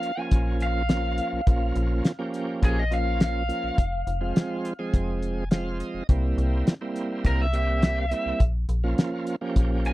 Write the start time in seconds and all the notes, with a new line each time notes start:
Already playing: F3 A#3 C#4 F4 F5
0.03 closed hi-hat
0.17 F3 A#3 C#4 F4 G#5
0.31 A#1, kick, closed hi-hat
0.60 F5, closed hi-hat
0.89 F3 A#3 C#4 F4, snare, closed hi-hat
1.18 closed hi-hat
1.33 A#1
1.47 A#1 F3 A#3 C#4 F4, kick, closed hi-hat
1.75 A#1, closed hi-hat
2.05 snare, closed hi-hat
2.19 F3 A#3 C#4 G4
2.34 closed hi-hat
2.62 A#1 G#4, kick, closed hi-hat
2.79 D#5
2.91 F3 A#3 C#4 F4 F5, closed hi-hat
3.20 F5, snare, closed hi-hat
3.48 F3 A#3 C#4 F4, closed hi-hat
3.64 A#1
3.78 F1, kick, closed hi-hat
4.07 F1, closed hi-hat
4.21 F3 G#3 C4 F4
4.36 snare, closed hi-hat
4.65 closed hi-hat
4.79 F3 G#3 C4 G#4
4.94 F1, kick, closed hi-hat
5.22 G#5, closed hi-hat
5.51 F3 G#3 C4 F4 F5, snare, closed hi-hat
5.80 D#5, closed hi-hat
5.94 F1
6.09 C2 G3 A#3 C4 E4, kick, closed hi-hat
6.38 C2, closed hi-hat
6.67 snare, closed hi-hat
6.81 G3 A#3 C4 E4
6.96 closed hi-hat
7.24 C2 A#4, kick, closed hi-hat
7.42 E5
7.53 G3 A#3 C4 G4 E5, closed hi-hat
7.82 E5, snare, closed hi-hat
8.11 G3 A#3 C4 E4, closed hi-hat
8.26 C2
8.40 A#1, kick, closed hi-hat
8.69 A#1, closed hi-hat
8.83 F3 A#3 C#4 F4
8.98 snare, closed hi-hat
9.27 closed hi-hat
9.41 F3 A#3 C#4 G4
9.56 A#1, kick, closed hi-hat
9.85 G#5, closed hi-hat